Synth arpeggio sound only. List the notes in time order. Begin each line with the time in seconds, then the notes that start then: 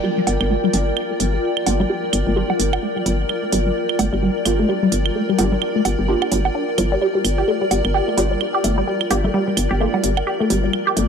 0.04 G3
0.17 G3
0.50 A3
0.64 G3
0.73 G3
1.10 A3
1.20 G3
1.34 G3
1.66 A3
1.80 G3
1.90 G3
2.27 A3
2.36 G3
2.50 G3
2.83 A3
2.96 G3
3.06 G3
3.43 A3
3.52 G3
3.66 G3
3.99 A3
4.13 G3
4.22 G3
4.59 A3
4.69 G3
4.83 G3
5.15 A3
5.29 G3
5.39 G3
5.76 A3
5.85 G3
5.99 G3
6.32 G3
6.55 D4
6.78 F3
6.92 G3
7.01 G3
7.15 G3
7.38 G4
7.48 A3
7.61 G3
7.71 G3
7.94 G4
8.08 A3
8.17 G3
8.31 G3
8.54 G4
8.64 A3
8.78 G3
8.87 G3
9.11 G4
9.24 A3
9.34 G3
9.47 G3
9.71 G4
9.80 A3
9.94 G3
10.04 G3
10.27 G4
10.40 A3
10.50 G3
10.64 G3
10.87 G4
10.97 A3